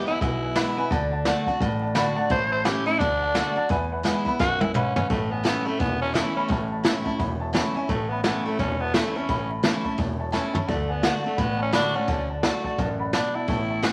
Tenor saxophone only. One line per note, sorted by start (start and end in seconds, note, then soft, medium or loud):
0.07 0.21 E4 loud
0.22 0.89 E4 loud
2.31 2.51 C5 loud
2.52 2.67 C5 loud
2.66 2.86 G4 loud
2.86 3.01 E4 loud
2.99 3.68 D4 loud
4.40 4.62 F#4 loud
4.61 4.74 E4 loud
4.74 4.95 C#4 loud
4.96 5.09 C#4 loud
5.10 5.33 A3 medium
5.32 5.45 B3 medium
5.45 5.68 B3 medium
5.66 5.81 A3 loud
5.80 6.01 B3 medium
6.02 6.16 C#4 loud
6.14 6.36 E4 loud
6.37 6.69 C#4 medium
7.89 8.11 A3 medium
8.10 8.23 B3 medium
8.24 8.46 B3 medium
8.45 8.59 A3 loud
8.59 8.82 C#4 loud
8.81 8.97 B3 loud
8.95 9.18 A3 medium
9.17 9.51 C#4 loud
10.69 10.93 A3 medium
10.92 11.04 B3 medium
11.05 11.14 B3 medium
11.27 11.42 A3 medium
11.40 11.60 B3 loud
11.62 11.74 C#4 loud
11.75 11.97 D4 loud
11.96 12.30 C#4 loud
13.14 13.37 D4 medium
13.35 13.86 E4 medium
13.84 13.93 F#4 loud